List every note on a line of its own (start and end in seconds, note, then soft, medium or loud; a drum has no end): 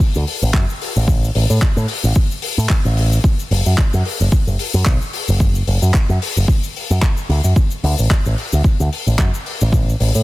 0.00 kick loud
0.00 cabasa medium
0.15 0.23 D2 medium
0.15 cabasa soft
0.27 open hi-hat loud
0.42 0.50 A1 loud
0.42 cabasa medium
0.54 0.64 F#2 medium
0.54 kick loud
0.54 clap loud
0.54 cabasa medium
0.69 cabasa soft
0.81 open hi-hat loud
0.96 1.29 A1 medium
0.96 cabasa medium
1.08 kick loud
1.08 cabasa medium
1.24 cabasa soft
1.35 1.45 A1 loud
1.35 open hi-hat loud
1.50 1.58 A2 medium
1.50 cabasa medium
1.62 kick loud
1.62 clap loud
1.62 cabasa medium
1.76 1.85 A2 medium
1.76 cabasa medium
1.88 open hi-hat loud
2.04 2.12 A1 medium
2.04 cabasa medium
2.15 kick loud
2.15 cabasa medium
2.31 cabasa medium
2.42 open hi-hat loud
2.58 2.66 A2 medium
2.58 cabasa medium
2.69 kick loud
2.69 clap loud
2.69 cabasa medium
2.85 3.18 A1 loud
2.85 cabasa soft
2.97 open hi-hat loud
3.13 cabasa medium
3.24 kick loud
3.24 cabasa medium
3.39 cabasa medium
3.51 3.61 F#1 loud
3.51 open hi-hat loud
3.66 3.74 F#2 medium
3.66 cabasa medium
3.78 kick loud
3.78 clap loud
3.78 cabasa medium
3.93 4.01 F#2 medium
3.93 cabasa medium
4.05 open hi-hat loud
4.20 4.28 F#1 medium
4.20 cabasa medium
4.32 muted picked electric bass stroke soft
4.32 kick loud
4.32 cabasa medium
4.47 4.55 F#1 medium
4.47 cabasa soft
4.59 open hi-hat loud
4.73 4.82 F#2 loud
4.73 cabasa medium
4.86 4.96 B1 medium
4.86 kick loud
4.86 clap loud
4.86 cabasa medium
5.01 cabasa soft
5.13 open hi-hat loud
5.28 5.61 F#1 loud
5.28 cabasa medium
5.40 kick loud
5.40 cabasa medium
5.55 cabasa medium
5.67 5.77 F#1 loud
5.67 open hi-hat loud
5.82 5.90 F#2 medium
5.82 cabasa medium
5.94 kick loud
5.94 clap loud
5.94 cabasa medium
6.09 6.17 F#2 medium
6.09 cabasa soft
6.22 open hi-hat loud
6.37 6.45 F#1 medium
6.37 cabasa medium
6.48 kick loud
6.48 cabasa medium
6.63 cabasa medium
6.76 open hi-hat loud
6.90 6.99 F#2 medium
6.90 cabasa medium
7.02 kick loud
7.02 clap loud
7.02 cabasa medium
7.17 cabasa soft
7.29 7.40 D2 loud
7.29 open hi-hat loud
7.44 7.52 F#2 medium
7.44 cabasa medium
7.56 kick loud
7.56 cabasa medium
7.71 cabasa medium
7.83 7.94 D2 loud
7.83 open hi-hat loud
7.99 8.07 A1 medium
7.99 cabasa medium
8.10 kick loud
8.10 clap loud
8.10 cabasa medium
8.25 8.34 A1 medium
8.25 cabasa soft
8.38 open hi-hat loud
8.53 8.61 D2 medium
8.53 cabasa medium
8.64 kick loud
8.64 cabasa medium
8.80 8.88 D2 medium
8.80 cabasa medium
8.93 open hi-hat loud
9.07 9.15 A1 loud
9.07 cabasa medium
9.18 9.29 F#2 medium
9.18 kick loud
9.18 clap loud
9.18 cabasa medium
9.34 cabasa medium
9.46 open hi-hat loud
9.61 9.94 A1 loud
9.61 cabasa medium
9.73 kick loud
9.73 cabasa medium
9.89 cabasa medium
10.00 10.10 A1 loud
10.00 open hi-hat loud
10.15 10.23 A2 medium
10.15 cabasa medium